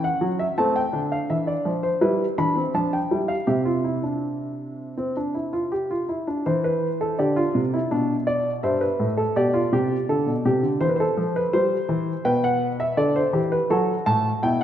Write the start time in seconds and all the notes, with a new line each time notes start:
Already playing: C#4
0.04 F#5
0.21 F#3
0.39 E5
0.58 A3 C4 A5
0.76 G5
0.93 D3 D4
1.12 F5
1.30 E3 E5
1.47 D5
1.65 F3
1.83 C5
2.01 G3 E4 B4
2.38 E3 D4 B5
2.56 C4
2.74 F3 D4 A5
2.93 G5
3.11 G3 E4
3.28 F5
3.47 C3 G4 E5
3.65 F4
3.84 E4
4.03 D4
4.97 C4
5.17 D4
5.35 E4
5.53 F4
5.72 G4
5.91 F4
6.09 E4
6.27 D4
6.46 E3 C5
6.64 B4
7.01 A4
7.19 D3 G4 D5
7.36 F4
7.55 C3
7.74 E4
7.91 B2 D4
8.27 D5
8.63 G2 C5 E5
8.81 B4
9.00 A2
9.17 A4
9.36 B2 G4 D5
9.54 F4
9.72 C3 G4
10.09 D3 A4
10.26 B2
10.45 C3 G4
10.63 D3
10.81 E3 C5
10.89 B4
10.96 C5
11.00 A4
11.17 F3
11.36 B4
11.53 G3 C5
11.89 E3
12.25 B2 B4 G5
12.44 F#5
12.80 E5
12.97 D3 A4 D5
13.16 C5
13.33 E3 G4
13.52 B4
13.70 F#3 F#4 A4
14.06 A2 A5
14.42 B2 E4 G5